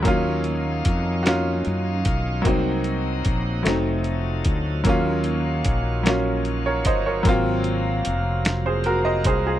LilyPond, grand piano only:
\new Staff \with { instrumentName = "Grand piano" } { \time 6/8 \key ees \dorian \tempo 4. = 50 << { r2. | r2. | r2 r16 <bes' des''>16 <c'' ees''>16 <bes' des''>16~ | <bes' des''>16 r4. <aes' c''>16 <ges' bes'>16 <c'' ees''>16 <aes' c''>16 <f' aes'>16 | } \\ { <ges bes des' f'>4 r8 <bes des' f' ges'>4 r8 | <ges bes c' ees'>4 r8 <ges a c' ees'>4 r8 | <ges bes des' f'>4 r8 <ges bes des' f'>4 r8 | <ges bes c' f'>4 r2 | } >> }